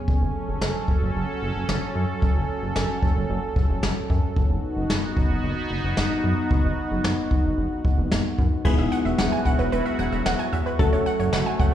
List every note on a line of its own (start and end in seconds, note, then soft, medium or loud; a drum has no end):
0.08 0.18 F#1 loud
0.08 4.33 F#3 medium
0.08 4.33 C#4 medium
0.08 4.33 A4 medium
0.08 kick loud
0.22 0.31 F#1 loud
0.48 0.58 F#1 medium
0.61 0.72 F#1 medium
0.61 snare loud
0.88 0.98 F#1 medium
0.88 kick medium
1.02 1.12 F#1 medium
1.15 1.25 F#1 loud
1.42 1.52 F#1 loud
1.56 1.65 F#1 loud
1.69 1.79 F#1 loud
1.69 snare loud
1.95 2.05 F#2 medium
2.22 2.32 F#1 loud
2.22 kick loud
2.36 2.45 F#1 loud
2.62 2.72 F#1 medium
2.76 2.86 F#1 loud
2.76 snare loud
3.02 3.12 F#1 medium
3.02 kick medium
3.16 3.26 F#1 medium
3.29 3.39 F#1 loud
3.56 3.66 F#1 loud
3.56 kick loud
3.69 3.79 F#1 loud
3.83 3.93 F#1 loud
3.83 snare loud
4.10 4.20 F#2 loud
4.10 kick loud
4.36 4.46 F#1 loud
4.36 8.61 B3 medium
4.36 8.61 D#4 medium
4.36 8.61 F#4 medium
4.36 kick loud
4.50 4.60 F#1 loud
4.77 4.87 F#1 loud
4.90 5.00 F#1 loud
4.90 snare loud
5.17 5.27 F#1 loud
5.17 kick medium
5.30 5.40 F#1 medium
5.44 5.54 F#1 loud
5.70 5.80 F#1 loud
5.84 5.94 F#1 loud
5.97 6.07 F#1 loud
5.97 snare loud
6.24 6.34 F#2 loud
6.51 6.61 F#1 loud
6.51 kick loud
6.64 6.74 F#1 medium
6.91 7.01 F#1 loud
7.04 7.14 F#1 loud
7.04 snare loud
7.31 7.41 F#1 loud
7.31 kick medium
7.45 7.54 F#1 medium
7.58 7.68 F#1 loud
7.85 7.95 F#1 medium
7.85 kick loud
7.98 8.08 F#1 loud
8.11 8.21 F#1 loud
8.11 snare loud
8.38 8.48 F#2 loud
8.38 kick loud
8.65 8.75 E1 loud
8.65 11.74 F#3 medium
8.65 10.75 G#3 medium
8.65 10.75 B3 medium
8.65 10.75 E4 medium
8.65 10.77 E4 medium
8.65 11.74 F#4 medium
8.65 10.75 G#4 medium
8.65 8.76 B4 medium
8.65 kick loud
8.65 crash medium
8.78 8.88 E1 loud
8.78 8.89 E5 medium
8.78 closed hi-hat soft
8.92 9.03 F#5 medium
8.92 closed hi-hat medium
9.05 9.15 E1 medium
9.05 9.16 E5 medium
9.05 closed hi-hat medium
9.18 9.29 E1 loud
9.18 9.29 F#5 medium
9.18 snare loud
9.32 9.43 G#5 medium
9.32 closed hi-hat soft
9.45 9.55 E1 loud
9.45 9.56 F#5 medium
9.45 kick medium
9.45 closed hi-hat medium
9.59 9.69 E1 medium
9.59 9.70 B4 medium
9.59 closed hi-hat medium
9.72 9.82 E1 loud
9.72 9.83 B4 medium
9.72 closed hi-hat medium
9.86 9.96 E5 medium
9.86 closed hi-hat medium
9.99 10.09 E1 loud
9.99 10.10 F#5 medium
9.99 closed hi-hat medium
10.12 10.22 E1 loud
10.12 10.23 E5 medium
10.12 closed hi-hat medium
10.26 10.36 E1 loud
10.26 10.37 F#5 medium
10.26 snare loud
10.39 10.50 G#5 medium
10.39 closed hi-hat medium
10.53 10.62 E2 loud
10.53 10.63 E5 medium
10.53 closed hi-hat medium
10.66 10.77 B4 medium
10.66 closed hi-hat medium
10.79 10.89 F#1 loud
10.79 11.74 A3 medium
10.79 11.74 C#4 medium
10.79 11.74 F#4 medium
10.79 11.74 A4 medium
10.79 10.90 A4 loud
10.79 kick loud
10.79 closed hi-hat medium
10.93 11.03 F#1 loud
10.93 11.03 C#5 medium
10.93 closed hi-hat medium
11.06 11.17 F#5 medium
11.06 closed hi-hat medium
11.19 11.29 F#1 medium
11.19 11.30 C#5 medium
11.19 closed hi-hat medium
11.33 11.43 F#1 loud
11.33 11.44 F#5 medium
11.33 snare loud
11.46 11.57 G#5 medium
11.46 closed hi-hat medium
11.59 11.70 F#1 loud
11.59 11.70 F#5 medium
11.59 kick medium
11.59 closed hi-hat medium